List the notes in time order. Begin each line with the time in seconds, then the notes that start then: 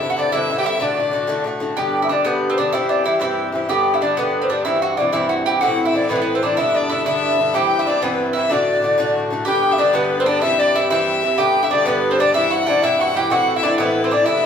Already playing: E5
0.02 G2 D3 C4 E4
0.10 F#4 F#5
0.16 G2 D3 C4 D4 E4 D5
0.32 G2 D3 C4 E4 E5
0.49 G2 D3 C4 E4
0.57 G4 G5
0.64 G2 D3 C4 E4 E5
0.80 A2 D3 A3 D4 F#4 D5
0.97 A2 D3 A3 F#4
1.11 A2 D3 A3 F#4
1.27 A2 D3 A3 F#4
1.44 A2 D3 A3 F#4
1.60 A2 D3 A3 F#4
1.77 G2 D3 B3 G4 G5
2.02 E4 E5
2.09 G2 D3 B3 D4 G4 D5
2.25 G2 D3 B3 G4 B4
2.49 C4 C5
2.57 G2 D3 B3 D4 G4 D5
2.72 G2 E3 C4 E4 G4 E5
2.89 D4 D5
3.04 G2 E3 C4 E4 G4 E5
3.20 G2 E3 C4 E4 G4 E5
3.52 G2 E3 C4 G4
3.69 G2 D3 B3 G4 G5
3.94 E4 E5
4.01 G2 D3 B3 D4 G4 D5
4.17 G2 D3 B3 G4 B4
4.42 C4 C5
4.49 G2 D3 B3 D4 G4 D5
4.65 G2 E3 C4 E4 E5
4.82 F#4 F#5
4.97 G2 E3 C4 D4 E4 D5
5.12 G2 E3 C4 E4 E5
5.29 F#4
5.46 G2 E3 C4 E4 G4 G5
5.61 A2 E3 C4 E4 F#4 F#5
5.85 E4 E5
5.93 A2 E3 C4 E4 D5
6.09 A2 E3 B3 C4 E4 B4
6.16 B3
6.22 B3
6.35 C4 C5
6.42 A2 E3 C4 D4 E4 D5
6.57 G2 D3 B3 D4 E4 E5
6.75 D4 D5
6.89 G2 D3 B3 D4 E4 E5
7.06 G2 D3 B3 D4 E4 E5
7.39 G2 D3 B3 D4
7.54 G2 E3 C4 E4 G4 G5
7.79 E4 E5
7.86 G2 E3 C4 D4 E4 D5
8.02 G2 E3 B3 C4 E4 B4
8.33 G2 E3 C4 E4 E5
8.38 E4
8.49 A2 D3 A3 D4 F#4 D5
8.82 A2 D3 A3 F#4
8.98 A2 D3 A3 F#4
9.30 A2 D3 A3 F#4
9.45 G2 D3 B3 G4 G5
9.71 E5
9.78 G2 D3 B3 D4 G4 D5
9.93 G2 D3 B3 G4 B4
10.19 C4 C5
10.26 G2 D3 B3 D4 G4 D5
10.41 G2 E3 C4 E4 G4 E5
10.58 D4 D5
10.74 G2 E3 C4 E4 G4 E5
10.90 G2 E3 C4 E4 G4 E5
11.22 G2 E3 C4 G4
11.38 G2 D3 B3 G4 G5
11.63 E4 E5
11.70 G2 D3 B3 D4 G4 D5
11.86 G2 D3 B3 G4 B4
12.11 C4 C5
12.18 G2 D3 B3 D4 G4 D5
12.33 G2 E3 C4 E4 E5
12.51 F#4 F#5
12.66 G2 E3 C4 D4 E4 D5
12.81 G2 E3 C4 E4 E5
12.99 F#4 F#5
13.14 G2 E3 C4 E4 G4 G5
13.30 A2 E3 C4 E4 F#4 F#5
13.56 E4 E5
13.63 A2 E3 C4 D4 E4 D5
13.78 A2 E3 B3 C4 E4 B4
14.03 C4 C5
14.10 A2 E3 C4 D4 E4 D5
14.24 G2 D3 B3 E4 E5
14.28 D4